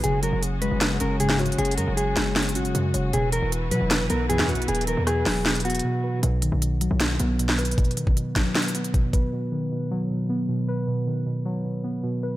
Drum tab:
HH |x-----------x-----------x-----------x-----------x-----------x-----------x-----------x---x---x---|x---x---x---x-----------x-----------x-----------x---x---x---x-----x-----x-----------x-----------|x-----------x-----------x-----------x-----------x-----------x-----------x-----------x---x---x---|x---x---x---x-----------x-----------o-----------x--x--x--x--x--x--x--x--------------------------|
CP |------------------------------------------------x-----------------------------x-----------------|------------------------------------x-----------x-----------------------------------------------|------------------------------------------------x-----------------------------x-----------------|------------------------------------x-----------x-----------------------------------------------|
SD |------------------------------------------------o-----------------------------o-----------------|------------------------------------o-----------o-----------------------------------------------|------------------------------------------------o-----------------------------o-----------------|------------------------r-----------o-----------o-----------------------------------------------|
BD |------------------------------------------------------------------------------------------------|------------------------------------------------------------------------------------------------|------------------------------------------------------------------------------------------------|------------------------------------------------------------------------------------------------|

HH |x-----------x-----------x-----------x-----------x-----------x-----------x-----------x---x---x---|x---x---x---x-----------x-----------x-----------x---x---x---x-----x-----x-----------x-----------|------------------------------------------------------------------------------------------------|------------------------------------------------------------------------------------------------|
CP |------------------------------------------------x-----------------------------x-----------------|------------------------------------x-----------x-----------------------------------------------|------------------------------------------------------------------------------------------------|------------------------------------------------------------------------------------------------|
SD |------------------------------------------------o-----------------------------o-----------------|------------------------------------o-----------o-----------------------------------------------|------------------------------------------------------------------------------------------------|------------------------------------------------------------------------------------------------|
BD |------------------------------------------------------------------------------------------------|o-----------------o-----------------o-----------------------------------o-----------o-----------|------------------------------------------------------------------------------------------------|------------------------------------------------------------------------------------------------|